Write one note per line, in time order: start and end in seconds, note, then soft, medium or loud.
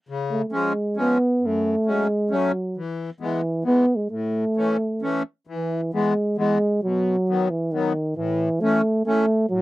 0.09 0.42 C#3 medium
0.31 0.47 A3 medium
0.47 0.55 A3 medium
0.52 0.73 F3 medium
0.52 0.73 G#3 medium
0.52 0.99 G#3 medium
0.52 0.73 C#4 medium
0.96 1.18 F3 medium
0.96 1.18 G#3 medium
0.96 1.47 B3 medium
0.96 1.18 C#4 medium
1.41 1.75 F#2 medium
1.46 1.91 A3 medium
1.85 2.07 F#3 medium
1.85 2.07 A3 medium
1.85 2.07 C#4 medium
1.90 2.36 G#3 medium
2.29 2.52 F#3 medium
2.29 2.51 A3 medium
2.29 2.52 C#4 medium
2.35 2.79 F#3 medium
2.77 3.10 E3 medium
3.20 3.41 E3 medium
3.20 3.42 G#3 medium
3.20 3.42 B3 medium
3.24 3.65 E3 medium
3.64 3.86 E3 medium
3.64 3.86 G#3 medium
3.64 3.86 B3 medium
3.64 3.97 B3 loud
3.96 4.10 G#3 medium
4.10 4.45 A2 medium
4.10 5.20 A3 medium
4.56 4.77 E3 medium
4.56 4.77 A3 medium
4.56 4.77 C#4 medium
5.01 5.22 E3 medium
5.01 5.23 A3 medium
5.01 5.23 C#4 medium
5.47 5.81 E3 medium
5.47 5.90 E3 medium
5.93 6.13 E3 medium
5.93 6.14 G#3 medium
5.93 6.36 G#3 medium
5.93 6.14 B3 medium
6.37 6.58 E3 medium
6.37 6.58 G#3 medium
6.37 6.80 G#3 medium
6.37 6.58 B3 medium
6.83 7.16 B2 medium
6.83 7.51 F#3 medium
7.29 7.48 D#3 medium
7.29 7.48 F#3 medium
7.29 7.49 B3 medium
7.50 7.73 E3 medium
7.72 8.16 D#3 medium
7.72 7.92 D#3 medium
7.72 7.93 F#3 medium
7.72 7.93 B3 medium
8.16 8.49 A2 medium
8.16 8.62 E3 medium
8.60 8.81 E3 medium
8.60 9.04 A3 loud
8.60 8.81 A3 medium
8.60 8.82 C#4 medium
9.06 9.26 E3 medium
9.06 9.46 A3 loud
9.06 9.26 A3 medium
9.06 9.26 C#4 medium
9.49 9.62 A2 medium
9.49 9.62 F#3 medium